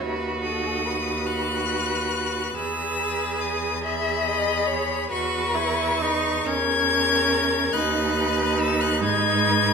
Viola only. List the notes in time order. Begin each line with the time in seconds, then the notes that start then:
0.00 F#4
1.26 F#4
2.56 G#4
3.84 G#4
5.11 F#4
5.54 E4
6.01 D#4
6.47 C#4
7.74 D#4